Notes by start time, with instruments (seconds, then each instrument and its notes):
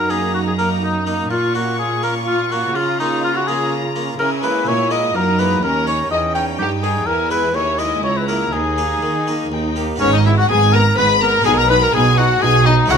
Already playing: harpsichord F#2, cello section F#2, viola section D#4, oboe A#4, violin section A#5
0.09 harpsichord A#3 D#4, violin section G#4, oboe G#4
0.34 violin section F#4, oboe F#4
0.46 violin section G#4, oboe G#4
0.57 harpsichord A#3 D#4, violin section A#4, oboe A#4
0.82 violin section D#4, oboe D#4
1.07 harpsichord A#3 D#4, oboe D#4, violin section D#4
1.30 cello section A#2, harpsichord A#2, viola section F4, oboe F4, violin section F4 C#6
1.54 harpsichord A#3 C#4, violin section F#4, oboe F#4
1.79 oboe G#4, violin section G#4
2.03 harpsichord A#3 C#4, violin section A#4, oboe A#4
2.27 oboe F4, violin section F4
2.51 harpsichord A#3 C#4, oboe F#4, violin section F#4
2.75 cello section C#3, harpsichord C#3, violin section F4 A#5, oboe F4
3.00 harpsichord A#3 C#4, oboe D#4, violin section D#4
3.24 violin section F4, oboe F4
3.35 violin section F#4, oboe F#4
3.48 harpsichord A#3 C#4, oboe G#4, violin section G#4
3.96 harpsichord A#3 C#4
4.19 cello section C#3, harpsichord C#3, viola section E4, oboe A#4, violin section A#4 G#5
4.43 harpsichord G#3 A#3 E4, oboe B4, violin section B4
4.67 harpsichord A#2, cello section A#2, oboe C#5, violin section C#5
4.91 harpsichord G#3 A#3 E4, violin section D#5, oboe D#5
5.15 harpsichord F#2, cello section F#2, viola section D#4, oboe A#4, violin section A#4 A#5
5.39 harpsichord G#3 A#3 E4, oboe B4, violin section B4
5.63 harpsichord D#2, cello section D#2, viola section C#4, oboe A#4, violin section A#4 A#5
5.87 harpsichord C#4 D#4, oboe C#5, violin section C#5
6.11 harpsichord E2, cello section E2, viola section C#4, oboe D#5, violin section D#5 G5
6.35 harpsichord C#4 D#4, oboe G5, violin section G5
6.59 cello section G2, harpsichord G2, viola section D#4, oboe G4, violin section G4
6.82 harpsichord C#4 D#4, oboe G#4, violin section G#4
7.06 cello section E2, harpsichord E2, viola section E4, oboe A#4, violin section A#4 G#5
7.31 harpsichord G#3 E4 G#4, oboe B4, violin section B4
7.54 harpsichord D#2, cello section D#2, viola section E4, oboe C#5, violin section C#5 G#5
7.79 harpsichord G#3 E4 G#4, oboe D#5, violin section D#5
8.03 harpsichord C#2, cello section C#2, oboe C#5, violin section C#5 A#5
8.17 oboe B4, violin section B4
8.28 harpsichord A#3 E4 G#4, oboe A#4, violin section A#4
8.52 cello section D#2, harpsichord D#2, viola section D#4, oboe G#4, violin section G#4 G#5
8.78 harpsichord A#3 D#4 G#4
9.02 cello section D#3, harpsichord D#3
9.27 harpsichord A#3 D#4 G#4
9.52 cello section D#2, harpsichord D#2, viola section D#4, violin section G5
9.76 harpsichord A#3 D#4 G4
9.96 harpsichord B3 D#4 G#4
10.00 double bass section G#1, harpsichord G#2, cello section G#2, viola section B3, oboe C#4, violin section C#4 C#5
10.13 violin section D#4 D#5, oboe D#4
10.25 viola section B3, oboe E4, violin section E4 E5
10.37 violin section F#4 F#5, oboe F#4
10.49 double bass section G#1, harpsichord G#2, cello section G#2, viola section B3, violin section G#4 G#5, oboe G#4
10.73 viola section B3, oboe A#4, violin section A#4 A#5
10.97 double bass section G#1, harpsichord G#2, cello section G#2, viola section B3, violin section B4 B5, oboe B4
11.21 viola section B3, violin section A#4 A#5, oboe A#4
11.41 harpsichord G#3 D#4 G#4, oboe G#4, violin section G#4 G#5
11.46 double bass section B1, cello section B2, harpsichord B2, viola section D#4
11.58 oboe A#4, violin section A#4 A#5
11.69 viola section D#4, violin section B4 B5, oboe B4
11.82 oboe A#4, violin section A#4 A#5
11.93 double bass section B1, cello section B2, harpsichord B2, viola section D#4, oboe G#4, violin section G#4 G#5
12.18 viola section D#4, oboe F#4, violin section F#4 F#5
12.42 double bass section B1, harpsichord B2, cello section B2, viola section D#4, violin section G#4 G#5, oboe G#4
12.66 viola section D#4, oboe D#4, violin section D#4 D#5
12.86 harpsichord G#3 E4 G#4, violin section F#4 F#5
12.90 double bass section C#2, harpsichord C#3, cello section C#3, viola section E4, oboe F#4